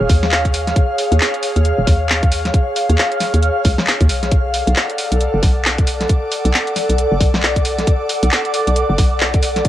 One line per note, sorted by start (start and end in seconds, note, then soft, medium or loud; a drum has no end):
0.00 0.07 D#1 medium
0.00 4.32 G#4 medium
0.00 4.32 C#5 medium
0.00 4.32 F5 medium
0.00 4.33 F5 medium
0.00 4.33 F6 medium
0.09 0.73 D#2 medium
0.09 kick loud
0.09 open hi-hat loud
0.23 snare soft
0.32 clap loud
0.45 kick medium
0.45 closed hi-hat soft
0.54 open hi-hat medium
0.67 snare soft
0.67 closed hi-hat soft
0.76 kick loud
0.76 closed hi-hat medium
0.98 open hi-hat medium
1.12 1.19 D#2 loud
1.12 closed hi-hat medium
1.20 clap loud
1.34 closed hi-hat soft
1.43 open hi-hat medium
1.56 1.73 D#2 medium
1.56 closed hi-hat medium
1.65 closed hi-hat medium
1.78 1.85 D#1 loud
1.87 2.51 D#2 medium
1.87 kick loud
1.87 snare soft
1.87 open hi-hat loud
2.09 clap loud
2.23 kick loud
2.23 closed hi-hat soft
2.32 open hi-hat medium
2.45 snare soft
2.45 closed hi-hat soft
2.54 kick loud
2.54 closed hi-hat medium
2.76 open hi-hat medium
2.90 2.96 D#2 loud
2.90 closed hi-hat medium
2.98 clap loud
3.12 closed hi-hat soft
3.21 snare soft
3.21 open hi-hat medium
3.34 3.50 D#2 medium
3.34 closed hi-hat medium
3.43 closed hi-hat medium
3.65 3.75 C#2 medium
3.65 kick loud
3.65 open hi-hat loud
3.78 snare soft
3.87 clap loud
4.01 4.11 D#2 loud
4.01 kick medium
4.01 closed hi-hat soft
4.09 4.63 B1 medium
4.09 open hi-hat medium
4.23 snare soft
4.23 closed hi-hat soft
4.32 9.69 A4 medium
4.32 9.69 D5 medium
4.32 9.69 D6 medium
4.32 kick loud
4.32 closed hi-hat medium
4.45 9.69 D5 medium
4.45 9.69 F#5 medium
4.54 open hi-hat medium
4.67 4.74 B1 loud
4.67 closed hi-hat medium
4.76 clap loud
4.90 closed hi-hat soft
4.98 open hi-hat medium
5.12 5.28 B1 medium
5.12 closed hi-hat medium
5.21 closed hi-hat medium
5.34 5.41 F#1 medium
5.43 6.06 B1 medium
5.43 kick loud
5.43 snare soft
5.43 open hi-hat medium
5.65 clap loud
5.78 kick loud
5.78 closed hi-hat medium
5.87 open hi-hat medium
6.01 snare soft
6.01 closed hi-hat soft
6.09 kick loud
6.09 closed hi-hat medium
6.32 open hi-hat medium
6.45 6.52 B1 loud
6.45 closed hi-hat medium
6.54 clap loud
6.67 closed hi-hat soft
6.76 snare soft
6.76 open hi-hat medium
6.90 7.06 B1 medium
6.90 closed hi-hat medium
6.98 closed hi-hat medium
7.12 7.19 F#1 loud
7.21 7.84 B1 medium
7.21 kick loud
7.21 open hi-hat loud
7.34 snare soft
7.43 clap loud
7.56 kick medium
7.56 closed hi-hat medium
7.65 open hi-hat medium
7.78 snare soft
7.78 closed hi-hat soft
7.87 kick loud
7.87 closed hi-hat medium
8.09 open hi-hat loud
8.23 8.30 B1 loud
8.23 closed hi-hat medium
8.31 clap loud
8.45 closed hi-hat soft
8.54 open hi-hat medium
8.67 8.84 B1 medium
8.67 closed hi-hat medium
8.76 closed hi-hat medium
8.90 8.96 F#1 loud
8.98 9.62 B1 medium
8.98 kick loud
8.98 snare soft
8.98 open hi-hat loud
9.20 clap loud
9.34 kick loud
9.34 closed hi-hat medium
9.43 open hi-hat medium
9.56 snare soft
9.56 closed hi-hat soft
9.65 kick loud
9.65 closed hi-hat medium